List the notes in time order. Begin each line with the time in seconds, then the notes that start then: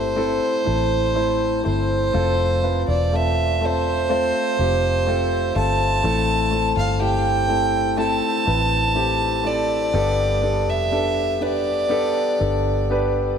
Already playing: G1 A2 A3 C4 E4 G4 A4 B4 C5
0.16 A3 C4 E4 A4
0.65 A1 A3 C4 E4 A4
1.15 A3 C4 E4 C5
1.63 G1 A3 C4 E4 C5
2.13 F1 A3 C4 F4 A4
2.62 A3 C4 F4 B4
2.88 E1 D5
3.12 A3 C4 F4 A4 E5
3.61 A3 C4 F4 A4
3.65 C5
4.09 A3 C4 F4 C5
4.58 F1 A3 C4 F4 G4
5.07 A3 C4 F4 A4
5.55 G1 A3 C4 F4 A4 A5
6.03 A1 A2 A3 C4 E4 A4
6.51 A3 C4 E4 A4
6.76 G1 F5
6.99 A3 C4 E4 G4
7.03 G5
7.48 A3 C4 E4 A4
7.97 A3 C4 E4 A4
8.01 A5
8.46 A1 A3 C4 E4 B4
8.94 A3 C4 E4 G4
9.43 A3 C4 E4 A4 D5
9.93 G1 G2 B3 D4 G4 A4
10.42 B3 D4 G4 A4
10.67 F1 E5
10.91 B3 D4 G4 A4
11.40 B3 D4 G4 B4 D5
11.89 B3 D4 G4 A4
12.39 G1 B3 D4 G4 A4
12.90 B3 D4 G4 B4